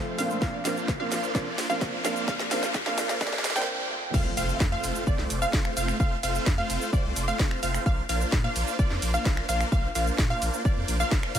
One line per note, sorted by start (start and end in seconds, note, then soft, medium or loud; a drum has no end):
0.00 0.10 F1 medium
0.00 0.15 F3 medium
0.00 0.16 A3 medium
0.00 0.16 C4 medium
0.00 0.16 F4 medium
0.00 0.16 A4 loud
0.00 0.16 C5 medium
0.00 0.16 F5 loud
0.00 riser medium
0.18 0.33 F1 loud
0.18 0.62 A#2 medium
0.18 0.62 F3 medium
0.18 0.39 A3 medium
0.18 0.62 C4 medium
0.18 0.39 C4 medium
0.18 0.62 D4 medium
0.18 0.39 F4 medium
0.18 0.63 A#4 medium
0.18 0.39 C5 medium
0.18 0.39 F5 loud
0.18 open hi-hat loud
0.18 shaker medium
0.30 shaker soft
0.42 0.57 A#1 loud
0.42 0.58 A#3 medium
0.42 0.58 D4 medium
0.42 0.58 F4 medium
0.42 0.58 C5 medium
0.42 0.58 F5 loud
0.42 kick loud
0.42 snare medium
0.42 shaker soft
0.64 0.80 A#1 medium
0.64 0.74 A#2 loud
0.64 0.74 F3 medium
0.64 0.91 A#3 medium
0.64 0.74 C4 medium
0.64 0.91 D4 medium
0.64 0.74 D4 medium
0.64 0.91 F4 medium
0.64 0.74 A#4 loud
0.64 0.91 C5 medium
0.64 0.91 F5 loud
0.64 snare medium
0.64 open hi-hat loud
0.64 shaker medium
0.77 shaker soft
0.88 1.03 A#2 medium
0.88 kick loud
0.88 snare medium
0.88 shaker soft
0.99 1.14 A#2 medium
0.99 1.14 F3 medium
0.99 1.32 A#3 medium
0.99 1.14 C4 medium
0.99 1.32 D4 medium
0.99 1.14 D4 medium
0.99 1.32 F4 medium
0.99 1.14 A#4 medium
0.99 1.32 C5 medium
0.99 1.32 F5 loud
1.11 1.19 A#1 medium
1.11 snare medium
1.11 open hi-hat loud
1.11 shaker medium
1.23 shaker soft
1.34 1.43 A#2 medium
1.34 1.44 F3 medium
1.34 1.67 A#3 medium
1.34 1.44 C4 medium
1.34 1.67 D4 medium
1.34 1.44 D4 medium
1.34 1.67 F4 medium
1.34 1.44 A#4 medium
1.34 1.67 C5 medium
1.34 1.67 D5 medium
1.34 kick loud
1.34 snare medium
1.34 shaker soft
1.46 1.54 F2 loud
1.58 1.73 A#1 loud
1.58 snare medium
1.58 open hi-hat loud
1.58 shaker medium
1.69 2.01 A#2 medium
1.69 2.02 F3 medium
1.69 2.02 A#3 loud
1.69 2.02 C4 medium
1.69 2.02 D4 medium
1.69 2.02 F4 medium
1.69 2.02 A#4 loud
1.69 2.02 C5 medium
1.69 2.02 F5 loud
1.69 shaker soft
1.81 1.96 A#1 medium
1.81 kick loud
1.81 snare medium
1.81 shaker soft
2.04 2.20 A#1 loud
2.04 2.48 A#2 medium
2.04 2.48 F3 medium
2.04 2.25 A#3 loud
2.04 2.48 C4 medium
2.04 2.25 D4 medium
2.04 2.48 D4 medium
2.04 2.25 F4 medium
2.04 2.49 A#4 loud
2.04 2.25 C5 medium
2.04 2.25 F5 loud
2.04 2.25 F5 medium
2.04 snare medium
2.04 open hi-hat loud
2.04 shaker medium
2.16 shaker soft
2.28 2.43 A#1 loud
2.28 2.44 A#3 medium
2.28 2.44 D4 medium
2.28 2.44 F4 medium
2.28 2.44 C5 medium
2.28 2.44 F5 loud
2.28 kick loud
2.28 snare medium
2.28 shaker soft
2.39 snare medium
2.51 2.66 A#1 medium
2.51 2.60 A#2 loud
2.51 2.60 F3 medium
2.51 2.78 A#3 medium
2.51 2.60 C4 loud
2.51 2.78 D4 medium
2.51 2.60 D4 medium
2.51 2.78 F4 medium
2.51 2.60 A#4 loud
2.51 2.78 C5 medium
2.51 2.78 F5 medium
2.51 2.78 F5 loud
2.51 snare medium
2.51 open hi-hat loud
2.51 shaker medium
2.63 snare medium
2.63 shaker soft
2.74 2.89 A#2 medium
2.74 kick loud
2.74 snare loud
2.74 shaker soft
2.85 3.00 A#2 medium
2.85 3.00 F3 medium
2.85 3.18 A#3 loud
2.85 3.00 C4 medium
2.85 3.18 D4 medium
2.85 3.00 D4 medium
2.85 3.18 F4 medium
2.85 3.00 A#4 medium
2.85 3.18 C5 medium
2.85 3.18 F5 loud
2.85 snare medium
2.98 3.05 A#1 medium
2.98 snare loud
2.98 open hi-hat loud
2.98 shaker medium
3.09 snare medium
3.09 shaker soft
3.20 3.29 A#2 medium
3.20 3.30 F3 medium
3.20 3.30 C4 medium
3.20 3.30 D4 medium
3.20 3.53 F4 medium
3.20 3.30 A#4 loud
3.20 3.53 C5 medium
3.20 3.53 D5 medium
3.20 kick loud
3.20 snare loud
3.20 shaker soft
3.27 snare medium
3.33 3.40 F2 medium
3.33 snare medium
3.38 snare medium
3.44 3.59 A#1 loud
3.44 snare loud
3.44 open hi-hat loud
3.44 shaker medium
3.50 snare medium
3.55 3.88 A#2 loud
3.55 3.88 F3 medium
3.55 3.67 A#3 medium
3.55 3.88 C4 medium
3.55 3.67 D4 medium
3.55 3.88 D4 medium
3.55 3.67 F4 medium
3.55 3.88 A#4 loud
3.55 3.67 C5 medium
3.55 3.67 G5 loud
3.55 3.67 G5 medium
3.55 snare medium
3.55 shaker soft
3.62 snare medium
3.90 4.34 F3 medium
3.90 4.34 A3 medium
3.90 4.34 C4 medium
3.90 4.35 A4 loud
4.14 4.29 F1 medium
4.14 4.30 A3 medium
4.14 4.30 C4 medium
4.14 4.30 F4 medium
4.14 4.30 C5 medium
4.14 4.30 F5 loud
4.14 kick loud
4.14 crash loud
4.14 impact medium
4.14 shaker soft
4.37 4.52 F1 medium
4.37 4.64 A3 medium
4.37 4.64 C4 medium
4.37 4.64 F4 medium
4.37 4.64 C5 medium
4.37 4.64 F5 medium
4.37 4.64 F5 loud
4.37 open hi-hat loud
4.37 shaker medium
4.49 shaker soft
4.60 4.75 F2 medium
4.60 kick loud
4.60 snare loud
4.60 shaker soft
4.72 5.04 A3 loud
4.72 5.04 C4 medium
4.72 5.04 F4 medium
4.72 5.04 C5 medium
4.72 5.04 F5 loud
4.84 4.91 F1 medium
4.84 open hi-hat medium
4.84 shaker medium
4.95 shaker soft
5.07 5.14 F1 loud
5.07 5.39 C4 medium
5.07 5.39 D5 medium
5.07 kick loud
5.07 shaker soft
5.18 5.26 C2 loud
5.18 snare soft
5.30 5.45 F1 loud
5.30 open hi-hat loud
5.30 shaker medium
5.42 5.74 A3 loud
5.42 5.74 C4 medium
5.42 5.74 F4 medium
5.42 5.74 C5 medium
5.42 5.74 F5 loud
5.42 shaker soft
5.53 5.68 F1 medium
5.53 kick loud
5.53 snare loud
5.53 shaker soft
5.65 finger snap medium
5.77 5.92 F1 loud
5.77 5.97 A3 medium
5.77 5.97 C4 medium
5.77 5.97 F4 medium
5.77 5.97 C5 medium
5.77 5.97 F5 loud
5.77 open hi-hat medium
5.77 shaker medium
5.88 finger snap medium
5.88 shaker soft
6.00 6.15 F1 loud
6.00 6.16 A3 loud
6.00 6.16 C4 medium
6.00 6.16 F4 medium
6.00 6.16 C5 medium
6.00 6.16 F5 loud
6.00 kick loud
6.00 shaker soft
6.23 6.38 F1 medium
6.23 6.50 A3 medium
6.23 6.50 C4 medium
6.23 6.50 F4 medium
6.23 6.50 C5 medium
6.23 6.50 F5 loud
6.23 open hi-hat loud
6.23 shaker medium
6.35 shaker soft
6.46 6.61 F2 loud
6.46 kick loud
6.46 snare loud
6.46 shaker soft
6.58 6.90 A3 loud
6.58 6.90 C4 medium
6.58 6.90 F4 medium
6.58 6.90 C5 medium
6.58 6.90 F5 loud
6.70 6.77 F1 medium
6.70 open hi-hat loud
6.70 shaker medium
6.81 shaker soft
6.93 7.00 F1 loud
6.93 7.25 C4 medium
6.93 7.25 C5 medium
6.93 7.25 D5 medium
6.93 kick loud
6.93 shaker soft
7.05 7.12 C2 loud
7.16 7.31 F1 loud
7.16 open hi-hat loud
7.16 shaker medium
7.28 7.60 A3 medium
7.28 7.60 C4 medium
7.28 7.60 F4 medium
7.28 7.60 C5 medium
7.28 7.60 F5 loud
7.28 shaker soft
7.39 7.54 F1 medium
7.39 kick loud
7.39 snare loud
7.39 shaker soft
7.51 finger snap medium
7.63 7.78 F1 loud
7.63 7.83 A3 medium
7.63 7.83 C4 medium
7.63 7.83 F4 medium
7.63 7.83 C5 medium
7.63 7.83 F5 loud
7.63 open hi-hat medium
7.63 shaker medium
7.74 finger snap medium
7.74 shaker soft
7.86 8.01 A#1 loud
7.86 8.02 A#3 medium
7.86 8.03 D4 medium
7.86 8.03 F4 medium
7.86 8.02 C5 medium
7.86 8.03 F5 loud
7.86 kick loud
7.86 shaker soft
8.09 8.24 A#1 medium
8.09 8.36 A#3 medium
8.09 8.36 D4 medium
8.09 8.36 F4 medium
8.09 8.36 C5 medium
8.09 8.36 F5 loud
8.09 open hi-hat loud
8.09 shaker medium
8.21 shaker soft
8.32 8.47 A#2 medium
8.32 kick loud
8.32 snare loud
8.32 shaker soft
8.44 8.76 A#3 loud
8.44 8.76 D4 medium
8.44 8.76 F4 medium
8.44 8.76 C5 medium
8.44 8.76 F5 loud
8.56 8.63 A#1 medium
8.56 open hi-hat loud
8.56 shaker medium
8.67 shaker soft
8.79 8.87 A#1 loud
8.79 9.11 F4 medium
8.79 9.11 D5 medium
8.79 kick loud
8.79 shaker soft
8.90 8.98 F2 loud
8.90 snare soft
9.02 9.17 A#1 loud
9.02 open hi-hat loud
9.02 shaker medium
9.14 9.46 A#3 medium
9.14 9.46 D4 medium
9.14 9.46 F4 medium
9.14 9.46 C5 medium
9.14 9.46 F5 loud
9.14 shaker soft
9.25 9.41 A#1 medium
9.25 kick loud
9.25 snare loud
9.25 shaker soft
9.37 finger snap medium
9.49 9.64 A#1 loud
9.49 9.69 A#3 loud
9.49 9.69 D4 medium
9.49 9.69 F4 medium
9.49 9.69 C5 medium
9.49 9.69 F5 loud
9.49 open hi-hat loud
9.49 shaker medium
9.61 finger snap medium
9.61 shaker soft
9.72 9.87 A#1 loud
9.72 9.89 D4 medium
9.72 9.89 F4 medium
9.72 9.89 C5 medium
9.72 9.89 F5 loud
9.72 kick loud
9.72 shaker soft
9.95 10.10 A#1 medium
9.95 10.22 A#3 medium
9.95 10.22 D4 medium
9.95 10.22 F4 medium
9.95 10.22 C5 medium
9.95 10.22 F5 loud
9.95 10.22 F5 medium
9.95 open hi-hat loud
9.95 shaker medium
10.07 shaker soft
10.18 10.34 A#2 medium
10.18 kick loud
10.18 snare loud
10.18 shaker soft
10.30 10.62 A#3 medium
10.30 10.62 D4 medium
10.30 10.62 F4 medium
10.30 10.62 C5 medium
10.30 10.62 F5 loud
10.42 10.49 A#1 medium
10.42 open hi-hat loud
10.42 shaker medium
10.54 shaker soft
10.65 10.73 A#1 loud
10.65 10.97 A#3 medium
10.65 10.97 D4 medium
10.65 10.97 F4 medium
10.65 10.97 D5 medium
10.65 kick loud
10.65 shaker soft
10.77 10.84 F2 loud
10.88 11.03 A#1 loud
10.88 open hi-hat loud
10.88 shaker medium
11.00 11.32 A#3 loud
11.00 11.32 D4 medium
11.00 11.32 F4 medium
11.00 11.32 C5 medium
11.00 11.32 F5 loud
11.00 shaker soft
11.11 11.19 A#1 loud
11.11 kick loud
11.11 snare loud
11.11 shaker soft
11.23 finger snap medium
11.35 11.39 A#2 medium
11.35 11.39 A#3 loud
11.35 11.39 D4 medium
11.35 11.39 F4 medium
11.35 11.39 C5 medium
11.35 11.39 F5 medium
11.35 11.39 F5 loud
11.35 open hi-hat medium
11.35 shaker medium